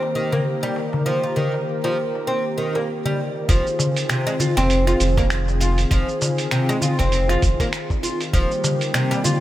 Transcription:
0.00 3.45 D#3 medium
0.00 3.45 A#3 medium
0.00 3.44 G4 medium
0.00 3.45 A#4 medium
0.00 darbuka tek soft
0.15 0.32 D#3 medium
0.32 0.45 A#3 medium
0.32 darbuka dum medium
0.63 0.75 G3 medium
0.63 darbuka ka soft
0.76 darbuka tek medium
0.93 darbuka tek medium
0.93 darbuka dum loud
1.06 1.23 F3 medium
1.23 1.36 F4 medium
1.36 1.53 D#3 medium
1.36 darbuka dum medium
1.54 darbuka tek soft
1.84 1.96 F3 medium
1.84 darbuka tek medium
2.15 darbuka ka medium
2.27 2.44 C4 medium
2.58 2.74 D#3 medium
2.75 2.87 A#3 medium
2.75 darbuka ka medium
2.75 darbuka tek medium
3.05 3.18 G3 medium
3.05 darbuka ka medium
3.05 darbuka dum medium
3.36 darbuka ka soft
3.49 3.62 F1 loud
3.49 9.40 D#3 medium
3.49 3.65 F3 loud
3.49 8.30 C4 medium
3.49 8.30 F4 medium
3.49 8.30 G#4 medium
3.49 kick loud
3.49 open hi-hat medium
3.49 shaker soft
3.67 shaker soft
3.79 darbuka tek medium
3.79 darbuka dum medium
3.79 shaker medium
3.96 open hi-hat soft
3.96 shaker soft
4.09 4.25 C3 loud
4.09 finger snap loud
4.09 open hi-hat medium
4.09 shaker soft
4.27 4.34 G#3 loud
4.27 darbuka tek medium
4.27 shaker soft
4.40 4.56 F4 medium
4.40 darbuka dum medium
4.40 shaker medium
4.57 4.95 F1 medium
4.57 4.86 C4 medium
4.57 open hi-hat soft
4.57 darbuka ka medium
4.57 darbuka tek medium
4.57 shaker soft
4.70 open hi-hat medium
4.70 shaker soft
4.87 5.00 F4 medium
4.87 finger snap soft
4.87 shaker soft
5.00 5.86 F1 loud
5.00 open hi-hat soft
5.00 shaker medium
5.17 5.25 A#3 medium
5.17 kick loud
5.17 open hi-hat soft
5.17 darbuka tek medium
5.17 shaker soft
5.30 finger snap loud
5.30 open hi-hat medium
5.30 shaker soft
5.48 darbuka ka medium
5.48 shaker soft
5.61 5.77 F4 medium
5.61 open hi-hat soft
5.61 shaker medium
5.78 open hi-hat soft
5.78 shaker soft
5.91 6.04 F1 loud
5.91 6.08 F3 loud
5.91 kick loud
5.91 open hi-hat medium
5.91 shaker soft
6.09 shaker soft
6.21 darbuka tek medium
6.21 darbuka dum medium
6.21 shaker medium
6.38 open hi-hat soft
6.38 shaker soft
6.51 6.67 C3 medium
6.51 finger snap loud
6.51 open hi-hat medium
6.51 shaker soft
6.69 6.76 G#3 loud
6.69 darbuka tek medium
6.69 shaker soft
6.82 6.98 F4 medium
6.82 darbuka dum medium
6.82 shaker medium
6.99 7.37 F1 medium
6.99 7.28 C4 medium
6.99 kick medium
6.99 open hi-hat soft
6.99 darbuka ka medium
6.99 darbuka tek medium
6.99 shaker soft
7.12 open hi-hat medium
7.12 shaker soft
7.29 7.42 F4 medium
7.29 finger snap soft
7.29 shaker soft
7.42 7.55 F1 medium
7.42 kick loud
7.42 open hi-hat soft
7.42 shaker medium
7.60 7.67 A#3 medium
7.60 kick medium
7.60 open hi-hat soft
7.60 darbuka ka medium
7.60 shaker soft
7.73 finger snap loud
7.73 open hi-hat medium
7.73 shaker soft
7.90 kick loud
7.90 darbuka ka medium
7.90 shaker soft
8.03 8.20 F4 medium
8.03 open hi-hat soft
8.03 shaker medium
8.20 open hi-hat soft
8.20 darbuka ka soft
8.20 shaker soft
8.33 8.46 D#1 loud
8.33 8.50 F3 loud
8.33 9.40 G3 medium
8.33 9.40 A#3 medium
8.33 9.40 G4 medium
8.33 kick loud
8.33 open hi-hat medium
8.33 shaker soft
8.51 shaker soft
8.64 darbuka tek medium
8.64 darbuka dum medium
8.64 shaker medium
8.81 open hi-hat soft
8.81 shaker soft
8.94 9.10 C3 loud
8.94 finger snap loud
8.94 open hi-hat medium
8.94 shaker soft
9.11 9.19 G3 loud
9.11 darbuka tek medium
9.11 shaker soft
9.24 9.40 F4 medium
9.24 darbuka dum loud
9.24 shaker medium

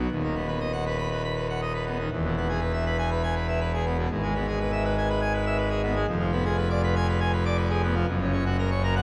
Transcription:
0.11 2.07 D#1 medium
0.11 2.07 D#2 medium
0.23 0.35 D#3 medium
0.35 0.47 B3 medium
0.48 0.59 B4 medium
0.60 0.72 D#5 medium
0.73 0.84 F#5 medium
0.86 0.97 B4 medium
0.98 1.09 B5 loud
1.11 1.22 B4 medium
1.24 1.35 B5 medium
1.36 1.47 B4 medium
1.50 1.60 F#5 medium
1.62 1.73 D#5 medium
1.74 1.85 B4 medium
1.87 1.98 B3 medium
1.99 2.09 D#3 medium
2.11 4.07 E1 loud
2.11 4.07 E2 loud
2.25 2.35 B2 medium
2.37 2.48 B3 medium
2.49 2.60 G#4 medium
2.61 2.72 B4 medium
2.73 2.84 E5 medium
2.86 2.97 B4 medium
2.98 3.09 G#5 loud
3.11 3.22 B4 medium
3.23 3.34 G#5 medium
3.36 3.47 B4 medium
3.48 3.59 E5 medium
3.61 3.72 B4 medium
3.74 3.85 G#4 medium
3.86 3.97 B3 medium
3.98 4.09 B2 medium
4.11 6.04 G#1 loud
4.11 6.04 G#2 loud
4.23 4.34 G#3 medium
4.35 4.46 B3 medium
4.47 4.59 G#4 medium
4.60 4.71 B4 medium
4.72 4.83 E5 medium
4.85 4.96 B4 medium
4.98 5.08 G#5 loud
5.10 5.21 B4 loud
5.22 5.33 G#5 medium
5.34 5.45 B4 medium
5.46 5.57 E5 medium
5.58 5.69 B4 medium
5.70 5.81 G#4 medium
5.83 5.94 B3 medium
5.96 6.06 G#3 medium
6.08 8.04 F1 loud
6.08 8.04 F2 loud
6.20 6.31 F3 medium
6.32 6.44 B3 medium
6.45 6.56 G#4 medium
6.57 6.68 B4 medium
6.70 6.81 D5 loud
6.83 6.94 B4 loud
6.96 7.07 G#5 loud
7.09 7.19 B4 loud
7.20 7.31 G#5 medium
7.33 7.44 B4 medium
7.45 7.56 D5 medium
7.57 7.69 B4 loud
7.70 7.81 G#4 loud
7.83 7.94 B3 medium
7.95 8.06 F3 medium
8.08 9.02 F#1 loud
8.08 9.02 F#2 loud
8.21 8.32 C#3 medium
8.33 8.44 C#4 medium
8.46 8.57 F#4 medium
8.59 8.70 A#4 loud
8.71 8.82 C#5 medium
8.84 8.94 A#4 loud
8.96 9.02 F#5 loud

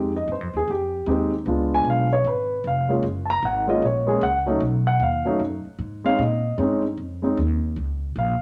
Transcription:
0.00 0.26 F2 medium
0.00 0.11 G#3 medium
0.00 0.11 C4 soft
0.00 0.12 D#4 soft
0.00 0.12 G4 medium
0.16 0.29 D#5 medium
0.28 0.41 G2 medium
0.32 0.54 C5 medium
0.41 0.53 F2 medium
0.54 0.66 D#2 medium
0.54 0.69 G#4 medium
0.68 1.06 F2 medium
0.68 1.06 G4 medium
1.06 1.45 D#2 medium
1.06 1.29 G#3 medium
1.06 1.29 C4 medium
1.06 1.30 D#4 medium
1.06 1.30 G4 medium
1.06 1.33 C5 medium
1.46 1.84 C#2 medium
1.46 2.06 G#3 medium
1.46 2.06 B3 medium
1.46 2.06 D4 medium
1.46 2.07 F4 medium
1.74 1.87 G#5 medium
1.85 2.23 B1 medium
1.90 2.12 F5 medium
2.13 2.26 C#5 medium
2.24 2.63 G#1 medium
2.24 2.63 B4 medium
2.64 3.02 F1 medium
2.64 2.90 F5 medium
2.89 3.02 G#3 medium
2.89 3.02 A#3 medium
2.89 3.03 C#4 medium
2.89 3.03 F4 medium
3.03 3.42 F#1 medium
3.25 3.28 A5 medium
3.30 3.43 A#5 loud
3.43 3.81 G#1 medium
3.43 3.69 F#5 medium
3.67 3.81 G#3 medium
3.67 3.81 A#3 medium
3.67 3.81 C#4 medium
3.67 3.82 F4 medium
3.67 3.83 D#5 medium
3.82 4.21 A#1 medium
3.82 4.21 C#5 medium
4.07 4.20 G#3 medium
4.07 4.20 A#3 medium
4.07 4.21 C#4 medium
4.07 4.21 G#4 medium
4.21 4.60 C#2 medium
4.21 4.38 F#5 medium
4.46 4.60 F#3 medium
4.46 4.60 A3 medium
4.46 4.60 C#4 medium
4.46 4.61 D#4 medium
4.60 4.99 B1 medium
4.87 5.01 F#5 medium
5.00 5.39 D#2 medium
5.00 5.39 F5 medium
5.25 5.38 F#3 medium
5.25 5.39 A3 medium
5.25 5.39 C#4 medium
5.25 5.39 D#4 medium
5.40 5.63 F#2 medium
5.65 muted upright bass stroke soft
5.79 6.17 G#2 medium
6.04 6.18 G#3 medium
6.04 6.18 C4 medium
6.04 6.18 C#4 medium
6.04 6.18 D#4 medium
6.04 6.19 F5 medium
6.19 6.57 A#2 medium
6.19 6.57 D#5 medium
6.58 6.97 G2 medium
6.58 6.81 G#3 medium
6.58 6.81 C4 medium
6.58 6.81 C#4 medium
6.58 6.82 D#4 medium
6.97 7.36 F2 medium
7.22 7.36 G#3 medium
7.22 7.36 C4 medium
7.22 7.36 C#4 medium
7.22 7.37 D#4 medium
7.37 7.76 D#2 medium
7.76 8.15 C#2 medium
8.16 8.39 A#1 medium
8.16 8.42 F5 medium

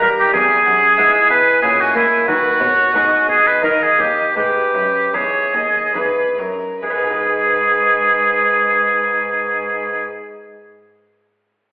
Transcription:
0.00 0.31 G3 medium
0.00 0.30 A#3 soft
0.00 0.31 D#4 soft
0.00 0.09 A#4 medium
0.00 0.33 A#5 medium
0.19 0.33 G4 medium
0.33 0.63 E2 medium
0.33 0.63 E2 soft
0.33 1.28 G#4 medium
0.33 0.67 G#5 medium
0.65 0.95 F#2 medium
0.65 0.95 F#2 soft
0.65 0.98 F#5 medium
0.97 1.28 G#2 medium
0.97 1.27 G#2 medium
0.97 1.59 G#3 soft
0.97 1.59 B3 soft
0.97 1.59 E4 soft
0.97 1.30 E5 medium
1.29 1.60 B2 medium
1.29 1.59 B2 soft
1.29 1.62 B4 medium
1.29 2.27 G#5 medium
1.62 1.92 A#2 soft
1.62 1.93 A#2 medium
1.62 2.24 G#3 soft
1.62 1.94 C#4 soft
1.62 2.25 E4 soft
1.62 1.82 G#4 medium
1.80 1.95 F#4 medium
1.95 2.24 A#3 soft
1.95 2.26 A#3 medium
1.95 2.27 E4 medium
2.27 2.57 D#3 soft
2.27 2.59 D#3 medium
2.27 3.26 F#4 medium
2.27 2.62 B4 medium
2.61 2.92 B2 medium
2.61 2.91 B2 soft
2.61 2.94 C#5 medium
2.94 3.26 G#2 medium
2.94 3.25 G#2 soft
2.94 3.59 G#3 soft
2.94 3.59 B3 soft
2.94 3.60 D#4 soft
2.94 4.34 D#5 medium
3.28 3.59 B2 soft
3.28 3.61 B2 medium
3.28 3.49 G#4 medium
3.47 3.63 B4 medium
3.62 3.96 D#3 medium
3.62 3.95 D#3 soft
3.62 4.32 A#3 soft
3.62 4.33 D#4 soft
3.62 3.84 A#4 medium
3.83 4.02 G#4 medium
3.99 4.33 D#2 soft
3.99 4.34 D#2 medium
3.99 4.36 G4 medium
4.36 4.71 G#2 soft
4.36 4.72 G#2 medium
4.36 4.73 G#3 soft
4.36 5.16 G4 medium
4.36 5.04 B4 soft
4.74 5.10 F#2 soft
4.74 5.11 F#2 medium
5.13 5.50 E2 soft
5.13 5.51 E2 medium
5.13 5.91 B3 soft
5.13 5.91 D#4 soft
5.13 6.38 G#4 medium
5.13 5.55 C#5 medium
5.54 5.92 D#2 soft
5.54 5.91 D#2 soft
5.54 5.94 D#5 medium
5.94 6.34 E2 medium
5.94 6.34 E2 soft
5.94 6.34 B3 soft
5.94 6.34 D#4 soft
5.94 6.39 B4 medium
6.37 6.78 F#2 medium
6.37 6.78 F#2 soft
6.37 6.82 A#4 medium
6.81 10.00 G#2 medium
6.81 10.01 G#3 soft
6.81 10.02 G#4 medium
6.81 10.02 B4 medium
6.90 10.09 B3 soft
6.97 10.15 D#4 soft
7.04 7.10 G#4 soft
7.11 10.30 D#5 soft

